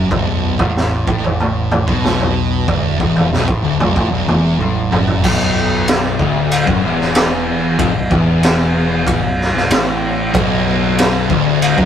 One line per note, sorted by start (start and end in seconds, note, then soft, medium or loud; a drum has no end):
0.00 0.11 F#2 loud
0.11 0.56 B0 loud
0.11 0.59 B1 loud
0.11 kick loud
0.11 floor tom medium
0.59 1.04 A1 loud
0.59 1.06 A2 loud
0.59 kick loud
0.59 floor tom loud
0.77 snare medium
1.08 1.84 A1 medium
1.08 1.87 A2 loud
1.08 kick loud
1.24 floor tom medium
1.40 mid tom medium
1.71 floor tom medium
1.71 mid tom medium
1.87 2.64 B1 medium
1.87 2.67 B2 loud
1.87 kick loud
2.04 snare medium
2.04 mid tom medium
2.20 floor tom medium
2.68 2.98 D1 medium
2.68 2.99 D2 loud
2.68 kick medium
2.68 floor tom medium
3.00 3.30 E1 medium
3.00 3.31 E2 loud
3.00 kick loud
3.16 floor tom medium
3.32 3.47 B0 loud
3.32 3.47 B1 loud
3.32 snare medium
3.48 3.63 A1 medium
3.48 3.63 A2 medium
3.48 kick loud
3.63 3.79 D1 medium
3.63 3.79 D2 loud
3.80 3.95 B0 medium
3.80 3.95 B1 loud
3.80 floor tom medium
3.80 mid tom medium
3.96 4.11 A1 loud
3.96 4.11 A2 medium
3.96 kick loud
3.96 mid tom medium
4.11 4.26 B0 medium
4.11 4.27 B1 loud
4.27 4.58 E1 medium
4.27 4.59 E2 medium
4.27 floor tom medium
4.27 mid tom medium
4.59 4.89 A1 loud
4.59 4.90 A2 loud
4.59 high tom medium
4.91 5.21 F#1 loud
4.91 5.22 F#2 medium
4.91 mid tom medium
5.07 floor tom medium
5.23 6.16 B0 medium
5.23 6.18 B1 loud
5.23 kick loud
5.23 crash loud
5.88 snare loud
5.88 ride bell medium
6.19 6.64 D1 medium
6.19 6.66 D2 loud
6.19 kick medium
6.51 ride bell medium
6.67 6.82 F#1 loud
6.67 6.82 F#2 loud
6.67 kick loud
6.83 7.75 E1 medium
6.83 7.78 E2 loud
7.01 snare soft
7.15 snare loud
7.15 ride bell medium
7.79 7.94 F1 loud
7.79 7.94 F2 loud
7.79 kick loud
7.79 ride bell medium
7.95 8.10 B0 medium
7.95 8.11 B1 medium
8.11 9.19 E1 medium
8.11 9.22 E2 loud
8.11 kick loud
8.43 snare loud
8.43 ride bell medium
9.07 kick loud
9.07 ride bell medium
9.22 9.52 B0 medium
9.22 9.48 B1 medium
9.41 snare soft
9.54 9.69 B0 medium
9.54 9.69 B1 medium
9.54 snare soft
9.70 10.30 A1 loud
9.70 10.33 A2 loud
9.70 snare loud
9.70 ride bell medium
10.34 11.26 B0 loud
10.34 11.29 B1 loud
10.34 kick loud
10.34 ride bell medium
10.98 snare loud
10.98 ride bell medium
11.30 11.74 D1 medium
11.30 11.77 D2 loud
11.30 kick loud
11.62 ride bell medium
11.78 11.85 F#1 loud
11.78 11.85 F#2 loud
11.78 kick loud